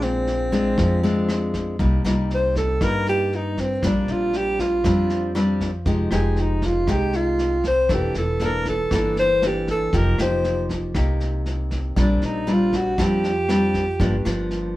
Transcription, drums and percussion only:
0.01 snare soft
0.27 snare soft
0.52 kick soft
0.52 snare soft
0.78 kick medium
0.78 cross-stick soft
0.78 snare soft
1.04 snare soft
1.29 cross-stick medium
1.29 snare soft
1.54 kick soft
1.54 snare soft
1.79 kick medium
1.79 snare soft
2.05 cross-stick soft
2.05 snare soft
2.30 snare soft
2.56 kick soft
2.56 snare soft
2.81 kick medium
2.81 cross-stick medium
2.81 snare soft
3.06 snare soft
3.32 snare soft
3.57 kick soft
3.57 snare soft
3.82 kick medium
3.82 cross-stick medium
3.82 snare soft
4.08 snare soft
4.33 snare soft
4.59 kick soft
4.59 snare soft
4.84 kick medium
4.84 cross-stick medium
4.84 snare soft
5.10 snare soft
5.35 cross-stick medium
5.35 snare soft
5.61 kick soft
5.61 snare soft
5.86 kick soft
5.86 snare soft
6.11 cross-stick medium
6.11 snare soft
6.36 snare soft
6.62 kick soft
6.62 snare soft
6.87 kick medium
6.87 cross-stick medium
6.87 snare soft
7.13 snare soft
7.39 snare soft
7.64 kick soft
7.64 snare soft
7.89 kick medium
7.89 cross-stick medium
7.89 snare soft
8.14 snare soft
8.39 snare soft
8.65 kick soft
8.65 snare soft
8.91 kick medium
8.91 cross-stick medium
8.91 snare soft
9.17 snare soft
9.42 cross-stick medium
9.42 snare soft
9.67 kick soft
9.67 snare soft
9.93 kick medium
9.93 snare soft
10.18 cross-stick medium
10.18 snare soft
10.44 snare soft
10.69 kick soft
10.69 snare soft
10.95 kick soft
10.95 cross-stick medium
10.95 snare soft
11.20 snare soft
11.46 snare soft
11.71 kick soft
11.71 snare soft
11.96 kick medium
11.96 cross-stick medium
11.96 snare soft
12.22 snare soft
12.47 snare soft
12.73 kick soft
12.73 snare soft
12.98 kick medium
12.98 cross-stick medium
12.98 snare soft
13.24 snare soft
13.49 cross-stick medium
13.49 snare soft
13.74 kick soft
13.74 snare soft
14.00 kick medium
14.00 snare soft
14.25 cross-stick medium
14.25 snare soft
14.51 snare soft

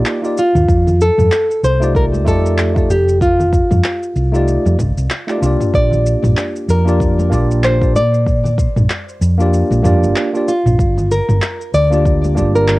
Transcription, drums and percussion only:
0.06 clap loud
0.06 shaker soft
0.25 shaker soft
0.38 shaker medium
0.55 mid tom medium
0.55 shaker soft
0.69 kick loud
0.69 shaker soft
0.87 low conga medium
0.87 shaker soft
1.01 shaker medium
1.18 mid tom medium
1.18 high conga medium
1.18 shaker soft
1.32 clap loud
1.32 shaker soft
1.51 shaker soft
1.64 shaker medium
1.82 shaker soft
1.95 kick loud
1.95 shaker soft
2.13 high conga medium
2.13 shaker soft
2.26 kick medium
2.26 high conga medium
2.26 shaker medium
2.46 shaker soft
2.58 clap loud
2.58 shaker soft
2.76 kick loud
2.76 shaker soft
2.90 shaker medium
3.09 shaker soft
3.21 kick loud
3.21 shaker soft
3.39 low conga medium
3.39 shaker soft
3.53 kick loud
3.53 shaker medium
3.71 mid tom medium
3.71 high conga medium
3.71 shaker soft
3.84 clap loud
3.84 shaker soft
4.03 shaker soft
4.16 shaker medium
4.35 shaker soft
4.48 shaker soft
4.65 high conga medium
4.65 shaker soft
4.79 kick medium
4.79 mid tom medium
4.79 high conga medium
4.79 shaker medium
4.98 shaker soft
5.10 clap loud
5.10 shaker soft
5.29 clap soft
5.29 shaker soft
5.43 shaker medium
5.61 mid tom medium
5.61 shaker soft
5.74 kick loud
5.74 shaker soft
5.91 low conga medium
5.91 shaker soft
6.06 shaker medium
6.23 mid tom medium
6.23 high conga medium
6.23 shaker soft
6.37 clap medium
6.37 shaker soft
6.56 shaker soft
6.69 shaker medium
6.88 shaker soft
7.00 kick loud
7.00 shaker soft
7.19 high conga medium
7.19 shaker soft
7.32 kick medium
7.32 high conga medium
7.32 shaker medium
7.51 shaker soft
7.64 clap loud
7.64 shaker soft
7.82 kick loud
7.82 shaker soft
7.96 shaker medium
8.14 shaker soft
8.27 kick loud
8.27 shaker soft
8.44 low conga medium
8.44 shaker soft
8.58 kick loud
8.58 shaker medium
8.76 mid tom medium
8.76 high conga medium
8.76 shaker soft
8.90 clap loud
8.90 shaker soft
9.09 shaker soft
9.22 shaker medium
9.40 shaker soft
9.54 shaker soft
9.71 high conga medium
9.71 shaker soft
9.84 mid tom medium
9.84 high conga medium
9.84 shaker medium
10.04 shaker soft
10.16 clap loud
10.16 shaker soft
10.35 shaker soft
10.48 shaker medium
10.66 mid tom medium
10.66 shaker soft
10.79 kick loud
10.79 shaker soft
10.97 low conga medium
10.97 shaker soft
11.11 shaker medium
11.29 mid tom medium
11.29 high conga medium
11.29 shaker soft
11.42 clap loud
11.42 shaker soft
11.61 shaker soft
11.74 shaker medium
11.92 shaker soft
12.05 kick loud
12.05 shaker soft
12.24 high conga medium
12.24 shaker soft
12.37 kick medium
12.37 high conga medium
12.37 shaker medium
12.56 shaker soft
12.68 clap loud
12.68 shaker soft

